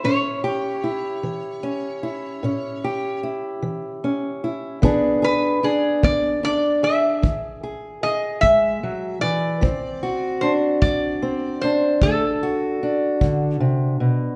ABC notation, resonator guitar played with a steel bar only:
X:1
M:12/8
L:1/8
Q:3/8=50
K:Edor
V:1 name="Resonator guitar played with a steel bar"
c8 z4 | z B ^G d d e3 ^d e2 =d- | d2 =c d2 c A4 z2 |]